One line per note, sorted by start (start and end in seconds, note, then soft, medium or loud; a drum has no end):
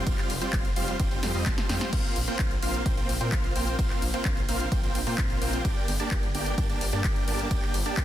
0.07 0.15 F1 loud
0.07 0.32 G3 medium
0.07 0.32 C4 medium
0.07 0.32 F4 medium
0.07 0.32 C5 medium
0.07 0.32 F5 medium
0.07 kick loud
0.07 closed hi-hat medium
0.07 ride medium
0.18 clap soft
0.18 closed hi-hat soft
0.30 0.39 F1 loud
0.30 open hi-hat loud
0.42 0.51 G3 medium
0.42 0.51 C4 medium
0.42 0.51 F4 medium
0.42 0.51 C5 medium
0.42 0.51 G5 medium
0.42 closed hi-hat medium
0.53 0.70 F1 loud
0.53 0.69 G3 medium
0.53 0.69 C4 medium
0.53 0.69 F4 medium
0.53 0.69 C5 medium
0.53 0.69 F5 medium
0.53 kick loud
0.53 clap loud
0.53 closed hi-hat medium
0.53 ride medium
0.65 closed hi-hat soft
0.76 0.94 F1 medium
0.76 0.96 G3 medium
0.76 0.96 C4 medium
0.76 0.96 F4 medium
0.76 0.96 C5 medium
0.76 0.96 F5 medium
0.76 open hi-hat loud
0.88 closed hi-hat medium
1.00 1.17 F1 medium
1.00 1.09 G3 medium
1.00 1.09 C4 medium
1.00 1.09 F4 medium
1.00 1.09 C5 medium
1.00 1.09 G5 loud
1.00 kick loud
1.00 closed hi-hat medium
1.00 ride medium
1.11 1.21 G3 medium
1.11 1.21 C4 medium
1.11 1.21 F4 medium
1.11 1.21 C5 medium
1.11 1.21 G5 medium
1.11 closed hi-hat soft
1.23 1.32 F2 medium
1.23 1.32 G3 medium
1.23 1.32 C4 medium
1.23 1.32 F4 medium
1.23 1.32 C5 medium
1.23 1.32 G5 medium
1.23 snare medium
1.23 open hi-hat loud
1.35 1.43 F2 medium
1.35 1.45 G3 medium
1.35 1.45 C4 medium
1.35 1.45 F4 medium
1.35 1.45 C5 medium
1.35 1.45 D#5 medium
1.35 open hi-hat medium
1.46 1.63 F1 medium
1.46 1.67 G3 medium
1.46 1.67 C4 medium
1.46 1.67 F4 medium
1.46 1.67 C5 medium
1.46 1.67 A5 loud
1.46 kick loud
1.46 snare medium
1.46 clap loud
1.46 closed hi-hat medium
1.46 ride medium
1.58 snare medium
1.58 closed hi-hat soft
1.69 1.78 F2 medium
1.69 1.90 G3 loud
1.69 1.90 C4 medium
1.69 1.90 F4 medium
1.69 1.90 C5 medium
1.69 1.90 G5 loud
1.69 snare medium
1.69 open hi-hat loud
1.81 snare medium
1.81 closed hi-hat medium
1.93 2.01 A#1 loud
1.93 2.18 A#3 medium
1.93 2.18 C4 medium
1.93 2.18 F4 medium
1.93 2.18 C5 medium
1.93 2.18 F5 medium
1.93 kick loud
1.93 closed hi-hat medium
1.93 crash medium
1.93 ride medium
2.16 2.25 A#1 loud
2.16 open hi-hat loud
2.28 2.38 A#3 medium
2.28 2.38 C4 medium
2.28 2.38 F4 medium
2.28 2.38 C5 medium
2.28 2.38 G5 medium
2.28 closed hi-hat medium
2.39 2.56 A#1 loud
2.39 2.55 A#3 medium
2.39 2.55 C4 medium
2.39 2.55 F4 medium
2.39 2.55 C5 medium
2.39 2.55 F5 loud
2.39 kick loud
2.39 clap loud
2.39 closed hi-hat medium
2.39 ride medium
2.51 closed hi-hat soft
2.62 2.80 A#1 medium
2.62 2.82 A#3 medium
2.62 2.82 C4 medium
2.62 2.82 F4 medium
2.62 2.82 C5 medium
2.62 2.82 F5 medium
2.62 open hi-hat loud
2.74 closed hi-hat medium
2.86 3.03 A#1 medium
2.86 2.95 A#3 medium
2.86 2.95 C4 medium
2.86 2.95 F4 medium
2.86 2.95 C5 medium
2.86 2.95 G5 loud
2.86 kick loud
2.86 closed hi-hat medium
2.86 ride medium
2.97 3.13 A#3 medium
2.97 3.13 C4 medium
2.97 3.13 F4 medium
2.97 3.13 C5 medium
2.97 3.13 G5 medium
2.97 closed hi-hat soft
3.09 3.18 A#1 medium
3.09 open hi-hat loud
3.21 3.29 A#2 medium
3.21 3.30 A#3 medium
3.21 3.30 C4 medium
3.21 3.29 F4 medium
3.21 3.30 C5 medium
3.21 3.30 G5 medium
3.21 closed hi-hat medium
3.32 3.49 A#1 medium
3.32 3.53 A#3 medium
3.32 3.53 C4 medium
3.32 3.53 F4 medium
3.32 3.53 C5 medium
3.32 3.53 F5 medium
3.32 kick loud
3.32 clap loud
3.32 closed hi-hat medium
3.32 ride medium
3.44 closed hi-hat soft
3.56 3.73 A#1 medium
3.56 3.76 A#3 loud
3.56 3.76 C4 medium
3.56 3.76 F4 medium
3.56 3.76 C5 medium
3.56 3.76 G5 loud
3.56 open hi-hat loud
3.67 closed hi-hat medium
3.79 3.87 A#1 loud
3.79 4.04 A#3 medium
3.79 4.04 C4 medium
3.79 4.04 F4 medium
3.79 4.04 C5 medium
3.79 4.04 F5 medium
3.79 kick loud
3.79 closed hi-hat medium
3.79 ride medium
3.90 clap soft
4.02 4.11 A#1 loud
4.02 open hi-hat loud
4.14 4.24 A#3 medium
4.14 4.24 C4 medium
4.14 4.24 F4 medium
4.14 4.24 C5 medium
4.14 4.24 G5 medium
4.14 closed hi-hat medium
4.25 4.42 A#1 loud
4.25 4.41 A#3 medium
4.25 4.41 C4 medium
4.25 4.41 F4 medium
4.25 4.41 C5 medium
4.25 4.41 F5 medium
4.25 kick loud
4.25 clap loud
4.25 closed hi-hat medium
4.25 ride medium
4.37 closed hi-hat soft
4.49 4.66 A#1 medium
4.49 4.68 A#3 medium
4.49 4.68 C4 medium
4.49 4.68 F4 medium
4.49 4.68 C5 medium
4.49 4.68 F5 medium
4.49 open hi-hat loud
4.60 closed hi-hat medium
4.72 4.89 A#1 medium
4.72 4.81 A#3 medium
4.72 4.81 C4 medium
4.72 4.81 F4 medium
4.72 4.81 C5 medium
4.72 4.81 G5 loud
4.72 kick loud
4.72 closed hi-hat medium
4.72 ride medium
4.83 4.99 A#3 medium
4.83 4.99 C4 medium
4.83 4.99 F4 medium
4.83 4.99 C5 medium
4.83 4.99 G5 medium
4.83 closed hi-hat soft
4.95 5.04 A#1 medium
4.95 open hi-hat loud
5.07 5.15 A#2 medium
5.07 5.16 A#3 medium
5.07 5.16 C4 medium
5.07 5.16 F4 medium
5.07 5.16 C5 medium
5.07 5.16 G5 medium
5.07 open hi-hat medium
5.18 5.35 A#1 medium
5.18 5.39 A#3 medium
5.18 5.39 C4 medium
5.18 5.39 F4 medium
5.18 5.39 C5 medium
5.18 5.39 F5 medium
5.18 kick loud
5.18 clap loud
5.18 closed hi-hat medium
5.18 ride medium
5.30 closed hi-hat soft
5.41 5.59 A#1 medium
5.41 5.62 A#3 medium
5.41 5.62 C4 medium
5.41 5.62 F4 medium
5.41 5.62 C5 medium
5.41 5.62 G5 loud
5.41 open hi-hat loud
5.53 closed hi-hat medium
5.65 5.73 G1 loud
5.65 5.90 A#3 medium
5.65 5.90 D4 medium
5.65 5.90 G4 medium
5.65 5.90 D5 medium
5.65 5.90 G5 medium
5.65 kick loud
5.65 closed hi-hat medium
5.65 ride medium
5.88 5.97 G1 loud
5.88 open hi-hat loud
6.00 6.10 A#3 medium
6.00 6.10 D4 medium
6.00 6.10 G4 medium
6.00 6.10 D5 medium
6.00 6.10 A5 medium
6.00 closed hi-hat medium
6.11 6.29 G1 loud
6.11 6.27 A#3 medium
6.11 6.27 D4 medium
6.11 6.27 G4 medium
6.11 6.27 D5 medium
6.11 6.27 G5 medium
6.11 kick loud
6.11 clap loud
6.11 closed hi-hat medium
6.11 ride medium
6.23 closed hi-hat soft
6.34 6.52 G1 medium
6.34 6.54 A#3 medium
6.34 6.54 D4 medium
6.34 6.54 G4 medium
6.34 6.54 D5 medium
6.34 6.54 G5 medium
6.34 open hi-hat loud
6.46 closed hi-hat medium
6.58 6.75 G1 medium
6.58 6.67 A#3 medium
6.58 6.67 D4 medium
6.58 6.67 G4 medium
6.58 6.67 D5 medium
6.58 6.67 A5 loud
6.58 kick loud
6.58 closed hi-hat medium
6.58 ride medium
6.69 6.85 A#3 medium
6.69 6.85 D4 medium
6.69 6.85 G4 medium
6.69 6.85 D5 medium
6.69 6.85 A5 medium
6.69 closed hi-hat soft
6.81 6.90 G1 medium
6.81 open hi-hat loud
6.93 7.01 G2 medium
6.93 7.02 A#3 medium
6.93 7.02 D4 medium
6.93 7.02 G4 medium
6.93 7.02 D5 medium
6.93 7.02 A5 medium
6.93 closed hi-hat medium
7.04 7.22 G1 medium
7.04 7.25 A#3 medium
7.04 7.25 D4 medium
7.04 7.25 G4 medium
7.04 7.25 D5 medium
7.04 7.25 G5 medium
7.04 kick loud
7.04 clap loud
7.04 closed hi-hat medium
7.04 ride medium
7.16 closed hi-hat soft
7.27 7.45 G1 medium
7.27 7.48 A#3 medium
7.27 7.48 D4 medium
7.27 7.48 G4 medium
7.27 7.48 D5 medium
7.27 7.48 A5 loud
7.27 open hi-hat loud
7.39 closed hi-hat medium
7.51 7.59 G1 loud
7.51 7.76 A#3 medium
7.51 7.76 D4 medium
7.51 7.76 G4 medium
7.51 7.76 D5 medium
7.51 7.76 G5 medium
7.51 kick loud
7.51 closed hi-hat medium
7.51 ride medium
7.62 clap soft
7.74 7.83 G1 loud
7.74 open hi-hat loud
7.86 7.96 A#3 medium
7.86 7.96 D4 medium
7.86 7.96 G4 medium
7.86 7.96 D5 medium
7.86 7.96 A5 medium
7.86 closed hi-hat medium
7.97 8.05 G1 loud
7.97 8.05 A#3 medium
7.97 8.05 D4 medium
7.97 8.05 G4 medium
7.97 8.05 D5 medium
7.97 8.05 G5 medium
7.97 kick loud
7.97 clap loud
7.97 closed hi-hat medium
7.97 ride medium